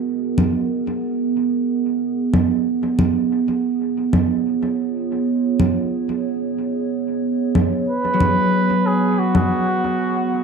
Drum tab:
CG |--O-----------O-|--O------O------|--O-----------O-|--O------O------|